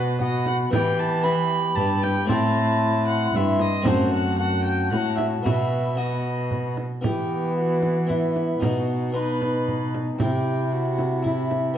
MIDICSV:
0, 0, Header, 1, 7, 480
1, 0, Start_track
1, 0, Key_signature, 1, "minor"
1, 0, Tempo, 525855
1, 666, Time_signature, 3, 2, 24, 8
1, 10751, End_track
2, 0, Start_track
2, 0, Title_t, "Recorder"
2, 0, Program_c, 0, 74
2, 189, Note_on_c, 0, 83, 77
2, 657, Note_off_c, 0, 83, 0
2, 667, Note_on_c, 0, 83, 75
2, 1110, Note_off_c, 0, 83, 0
2, 1141, Note_on_c, 0, 83, 89
2, 2092, Note_on_c, 0, 84, 80
2, 2105, Note_off_c, 0, 83, 0
2, 3049, Note_off_c, 0, 84, 0
2, 3062, Note_on_c, 0, 84, 76
2, 3532, Note_on_c, 0, 81, 72
2, 3545, Note_off_c, 0, 84, 0
2, 4005, Note_off_c, 0, 81, 0
2, 4011, Note_on_c, 0, 81, 70
2, 4480, Note_off_c, 0, 81, 0
2, 4497, Note_on_c, 0, 83, 62
2, 4541, Note_on_c, 0, 81, 67
2, 4550, Note_off_c, 0, 83, 0
2, 4977, Note_on_c, 0, 83, 59
2, 4990, Note_off_c, 0, 81, 0
2, 5451, Note_off_c, 0, 83, 0
2, 5457, Note_on_c, 0, 83, 66
2, 6171, Note_off_c, 0, 83, 0
2, 6432, Note_on_c, 0, 79, 65
2, 6878, Note_off_c, 0, 79, 0
2, 6905, Note_on_c, 0, 78, 65
2, 7388, Note_on_c, 0, 76, 57
2, 7402, Note_off_c, 0, 78, 0
2, 7862, Note_off_c, 0, 76, 0
2, 7867, Note_on_c, 0, 78, 65
2, 8344, Note_off_c, 0, 78, 0
2, 8353, Note_on_c, 0, 84, 65
2, 8391, Note_on_c, 0, 83, 70
2, 8400, Note_off_c, 0, 84, 0
2, 9057, Note_off_c, 0, 83, 0
2, 9312, Note_on_c, 0, 79, 61
2, 9755, Note_off_c, 0, 79, 0
2, 9796, Note_on_c, 0, 78, 68
2, 10260, Note_off_c, 0, 78, 0
2, 10273, Note_on_c, 0, 76, 60
2, 10740, Note_off_c, 0, 76, 0
2, 10751, End_track
3, 0, Start_track
3, 0, Title_t, "Viola"
3, 0, Program_c, 1, 41
3, 0, Note_on_c, 1, 71, 92
3, 190, Note_off_c, 1, 71, 0
3, 195, Note_on_c, 1, 75, 95
3, 426, Note_off_c, 1, 75, 0
3, 434, Note_on_c, 1, 78, 111
3, 507, Note_off_c, 1, 78, 0
3, 664, Note_on_c, 1, 79, 102
3, 902, Note_on_c, 1, 81, 106
3, 916, Note_off_c, 1, 79, 0
3, 1127, Note_on_c, 1, 83, 118
3, 1141, Note_off_c, 1, 81, 0
3, 1601, Note_on_c, 1, 81, 105
3, 1614, Note_off_c, 1, 83, 0
3, 1852, Note_on_c, 1, 79, 107
3, 1866, Note_off_c, 1, 81, 0
3, 2085, Note_off_c, 1, 79, 0
3, 2090, Note_on_c, 1, 81, 107
3, 2796, Note_off_c, 1, 81, 0
3, 2807, Note_on_c, 1, 78, 105
3, 3062, Note_on_c, 1, 76, 87
3, 3076, Note_off_c, 1, 78, 0
3, 3291, Note_on_c, 1, 75, 106
3, 3305, Note_off_c, 1, 76, 0
3, 3528, Note_off_c, 1, 75, 0
3, 3543, Note_on_c, 1, 72, 91
3, 3766, Note_off_c, 1, 72, 0
3, 3772, Note_on_c, 1, 78, 91
3, 3997, Note_off_c, 1, 78, 0
3, 4002, Note_on_c, 1, 78, 103
3, 4234, Note_off_c, 1, 78, 0
3, 4240, Note_on_c, 1, 79, 94
3, 4479, Note_off_c, 1, 79, 0
3, 4493, Note_on_c, 1, 78, 95
3, 4707, Note_off_c, 1, 78, 0
3, 4712, Note_on_c, 1, 76, 94
3, 4785, Note_off_c, 1, 76, 0
3, 4970, Note_on_c, 1, 76, 85
3, 5457, Note_on_c, 1, 75, 74
3, 5471, Note_off_c, 1, 76, 0
3, 6185, Note_off_c, 1, 75, 0
3, 6423, Note_on_c, 1, 67, 69
3, 6873, Note_off_c, 1, 67, 0
3, 6915, Note_on_c, 1, 66, 79
3, 7396, Note_on_c, 1, 64, 71
3, 7410, Note_off_c, 1, 66, 0
3, 7868, Note_on_c, 1, 66, 78
3, 7882, Note_off_c, 1, 64, 0
3, 8349, Note_off_c, 1, 66, 0
3, 8355, Note_on_c, 1, 71, 84
3, 9059, Note_off_c, 1, 71, 0
3, 9312, Note_on_c, 1, 67, 82
3, 9786, Note_on_c, 1, 66, 83
3, 9800, Note_off_c, 1, 67, 0
3, 10265, Note_off_c, 1, 66, 0
3, 10270, Note_on_c, 1, 64, 74
3, 10739, Note_off_c, 1, 64, 0
3, 10751, End_track
4, 0, Start_track
4, 0, Title_t, "Bassoon"
4, 0, Program_c, 2, 70
4, 0, Note_on_c, 2, 66, 89
4, 170, Note_off_c, 2, 66, 0
4, 191, Note_on_c, 2, 66, 83
4, 659, Note_off_c, 2, 66, 0
4, 665, Note_on_c, 2, 67, 79
4, 1109, Note_off_c, 2, 67, 0
4, 1146, Note_on_c, 2, 67, 86
4, 2104, Note_on_c, 2, 64, 84
4, 2117, Note_off_c, 2, 67, 0
4, 3056, Note_off_c, 2, 64, 0
4, 3064, Note_on_c, 2, 64, 85
4, 3393, Note_off_c, 2, 64, 0
4, 3531, Note_on_c, 2, 66, 77
4, 3999, Note_off_c, 2, 66, 0
4, 4018, Note_on_c, 2, 66, 74
4, 4484, Note_off_c, 2, 66, 0
4, 4498, Note_on_c, 2, 66, 68
4, 4968, Note_off_c, 2, 66, 0
4, 4980, Note_on_c, 2, 66, 68
4, 5452, Note_off_c, 2, 66, 0
4, 5465, Note_on_c, 2, 66, 69
4, 6175, Note_off_c, 2, 66, 0
4, 6432, Note_on_c, 2, 59, 66
4, 7355, Note_off_c, 2, 59, 0
4, 7390, Note_on_c, 2, 59, 59
4, 7865, Note_on_c, 2, 63, 62
4, 7879, Note_off_c, 2, 59, 0
4, 8352, Note_off_c, 2, 63, 0
4, 8361, Note_on_c, 2, 63, 60
4, 9319, Note_on_c, 2, 64, 61
4, 9332, Note_off_c, 2, 63, 0
4, 10270, Note_off_c, 2, 64, 0
4, 10281, Note_on_c, 2, 64, 63
4, 10744, Note_off_c, 2, 64, 0
4, 10751, End_track
5, 0, Start_track
5, 0, Title_t, "Harpsichord"
5, 0, Program_c, 3, 6
5, 0, Note_on_c, 3, 47, 67
5, 0, Note_on_c, 3, 59, 56
5, 0, Note_on_c, 3, 66, 56
5, 620, Note_off_c, 3, 59, 0
5, 626, Note_off_c, 3, 66, 0
5, 632, Note_off_c, 3, 47, 0
5, 642, Note_on_c, 3, 59, 62
5, 651, Note_on_c, 3, 64, 67
5, 669, Note_on_c, 3, 52, 65
5, 1110, Note_off_c, 3, 59, 0
5, 1121, Note_off_c, 3, 64, 0
5, 1121, Note_on_c, 3, 59, 57
5, 1134, Note_on_c, 3, 64, 57
5, 1582, Note_off_c, 3, 52, 0
5, 1625, Note_on_c, 3, 43, 70
5, 2054, Note_off_c, 3, 59, 0
5, 2056, Note_on_c, 3, 57, 60
5, 2060, Note_off_c, 3, 64, 0
5, 2061, Note_off_c, 3, 43, 0
5, 2071, Note_on_c, 3, 60, 65
5, 2079, Note_on_c, 3, 64, 56
5, 2086, Note_on_c, 3, 45, 70
5, 3010, Note_off_c, 3, 45, 0
5, 3059, Note_on_c, 3, 43, 66
5, 3471, Note_off_c, 3, 57, 0
5, 3479, Note_off_c, 3, 60, 0
5, 3483, Note_off_c, 3, 64, 0
5, 3485, Note_on_c, 3, 57, 57
5, 3494, Note_off_c, 3, 43, 0
5, 3495, Note_on_c, 3, 60, 59
5, 3511, Note_on_c, 3, 66, 59
5, 3522, Note_on_c, 3, 42, 67
5, 4449, Note_off_c, 3, 42, 0
5, 4487, Note_on_c, 3, 45, 58
5, 4915, Note_off_c, 3, 57, 0
5, 4920, Note_off_c, 3, 60, 0
5, 4928, Note_off_c, 3, 66, 0
5, 4935, Note_off_c, 3, 45, 0
5, 4955, Note_on_c, 3, 59, 51
5, 4965, Note_on_c, 3, 66, 48
5, 4980, Note_on_c, 3, 47, 55
5, 5423, Note_off_c, 3, 59, 0
5, 5434, Note_on_c, 3, 59, 45
5, 5440, Note_off_c, 3, 66, 0
5, 5449, Note_on_c, 3, 66, 47
5, 6211, Note_off_c, 3, 47, 0
5, 6387, Note_off_c, 3, 59, 0
5, 6395, Note_off_c, 3, 66, 0
5, 6401, Note_on_c, 3, 59, 42
5, 6409, Note_on_c, 3, 64, 41
5, 6421, Note_on_c, 3, 52, 48
5, 7346, Note_off_c, 3, 59, 0
5, 7350, Note_off_c, 3, 64, 0
5, 7365, Note_on_c, 3, 59, 43
5, 7375, Note_on_c, 3, 64, 41
5, 7828, Note_off_c, 3, 52, 0
5, 7837, Note_off_c, 3, 59, 0
5, 7847, Note_off_c, 3, 64, 0
5, 7848, Note_on_c, 3, 59, 44
5, 7855, Note_on_c, 3, 63, 43
5, 7875, Note_on_c, 3, 47, 48
5, 8316, Note_off_c, 3, 59, 0
5, 8327, Note_on_c, 3, 59, 42
5, 8329, Note_off_c, 3, 63, 0
5, 8340, Note_on_c, 3, 63, 44
5, 9269, Note_off_c, 3, 59, 0
5, 9276, Note_off_c, 3, 63, 0
5, 9278, Note_off_c, 3, 47, 0
5, 9297, Note_on_c, 3, 64, 43
5, 9311, Note_on_c, 3, 48, 49
5, 10230, Note_off_c, 3, 64, 0
5, 10246, Note_on_c, 3, 64, 47
5, 10710, Note_off_c, 3, 48, 0
5, 10715, Note_on_c, 3, 59, 47
5, 10719, Note_off_c, 3, 64, 0
5, 10751, Note_off_c, 3, 59, 0
5, 10751, End_track
6, 0, Start_track
6, 0, Title_t, "Cello"
6, 0, Program_c, 4, 42
6, 0, Note_on_c, 4, 47, 75
6, 637, Note_off_c, 4, 47, 0
6, 665, Note_on_c, 4, 52, 76
6, 1580, Note_off_c, 4, 52, 0
6, 1623, Note_on_c, 4, 43, 75
6, 2087, Note_off_c, 4, 43, 0
6, 2092, Note_on_c, 4, 45, 82
6, 3031, Note_off_c, 4, 45, 0
6, 3058, Note_on_c, 4, 43, 78
6, 3519, Note_off_c, 4, 43, 0
6, 3524, Note_on_c, 4, 42, 69
6, 4494, Note_on_c, 4, 45, 64
6, 4508, Note_off_c, 4, 42, 0
6, 4965, Note_off_c, 4, 45, 0
6, 4971, Note_on_c, 4, 47, 65
6, 6218, Note_off_c, 4, 47, 0
6, 6432, Note_on_c, 4, 52, 59
6, 7834, Note_off_c, 4, 52, 0
6, 7869, Note_on_c, 4, 47, 60
6, 9283, Note_off_c, 4, 47, 0
6, 9315, Note_on_c, 4, 48, 61
6, 10751, Note_off_c, 4, 48, 0
6, 10751, End_track
7, 0, Start_track
7, 0, Title_t, "Frame drum"
7, 187, Note_on_c, 9, 64, 46
7, 278, Note_off_c, 9, 64, 0
7, 421, Note_on_c, 9, 64, 52
7, 512, Note_off_c, 9, 64, 0
7, 667, Note_on_c, 9, 64, 85
7, 758, Note_off_c, 9, 64, 0
7, 1618, Note_on_c, 9, 64, 50
7, 1709, Note_off_c, 9, 64, 0
7, 1860, Note_on_c, 9, 64, 54
7, 1951, Note_off_c, 9, 64, 0
7, 2094, Note_on_c, 9, 64, 77
7, 2186, Note_off_c, 9, 64, 0
7, 3047, Note_on_c, 9, 64, 53
7, 3139, Note_off_c, 9, 64, 0
7, 3281, Note_on_c, 9, 64, 55
7, 3372, Note_off_c, 9, 64, 0
7, 3517, Note_on_c, 9, 64, 88
7, 3608, Note_off_c, 9, 64, 0
7, 4489, Note_on_c, 9, 64, 46
7, 4580, Note_off_c, 9, 64, 0
7, 4732, Note_on_c, 9, 64, 53
7, 4824, Note_off_c, 9, 64, 0
7, 4983, Note_on_c, 9, 64, 75
7, 5075, Note_off_c, 9, 64, 0
7, 5944, Note_on_c, 9, 64, 49
7, 6035, Note_off_c, 9, 64, 0
7, 6182, Note_on_c, 9, 64, 51
7, 6273, Note_off_c, 9, 64, 0
7, 6428, Note_on_c, 9, 64, 75
7, 6519, Note_off_c, 9, 64, 0
7, 7143, Note_on_c, 9, 64, 47
7, 7235, Note_off_c, 9, 64, 0
7, 7394, Note_on_c, 9, 64, 48
7, 7486, Note_off_c, 9, 64, 0
7, 7632, Note_on_c, 9, 64, 49
7, 7723, Note_off_c, 9, 64, 0
7, 7871, Note_on_c, 9, 64, 75
7, 7962, Note_off_c, 9, 64, 0
7, 8597, Note_on_c, 9, 64, 52
7, 8688, Note_off_c, 9, 64, 0
7, 8839, Note_on_c, 9, 64, 45
7, 8930, Note_off_c, 9, 64, 0
7, 9078, Note_on_c, 9, 64, 50
7, 9170, Note_off_c, 9, 64, 0
7, 9309, Note_on_c, 9, 64, 75
7, 9400, Note_off_c, 9, 64, 0
7, 10028, Note_on_c, 9, 64, 51
7, 10119, Note_off_c, 9, 64, 0
7, 10273, Note_on_c, 9, 64, 46
7, 10365, Note_off_c, 9, 64, 0
7, 10506, Note_on_c, 9, 64, 50
7, 10597, Note_off_c, 9, 64, 0
7, 10751, End_track
0, 0, End_of_file